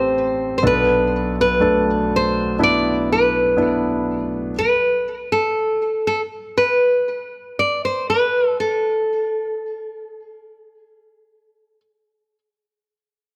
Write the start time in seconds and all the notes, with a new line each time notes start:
Already playing: A1 A2 C4 G4 A4 C5
0.58 C5
0.63 B1 B2 B3 D4 A4
0.67 B4
1.41 B4
1.60 A3 D4 A4
2.16 C5
2.59 B3 D4 E4
2.63 D5
3.12 B4
3.57 B3 D4 E4
4.59 B4
5.32 A4
6.07 A4
6.58 B4
7.59 D5
7.85 C5
8.10 B4
8.60 A4